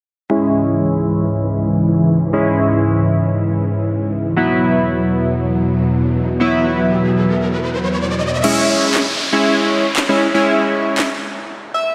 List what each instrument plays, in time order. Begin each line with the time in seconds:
0.30 string machine C#2 G#2 E3, synth keys G#3 C#4 E4
2.33 synth keys G#3 C#4 E4
4.36 string machine E2 B2 F#3, synth keys F#3 B3 E4, riser
6.40 synth keys F#3 B3 E4
8.44 synth keys G#3 C#4 E4, crash, downlifter
8.95 snare, clap
9.32 synth keys G#3 C#4 E4
9.97 snare, clap
10.09 synth keys G#3 C#4 E4
10.34 synth keys G#3 C#4 E4
10.98 snare, clap
11.74 synth keys E5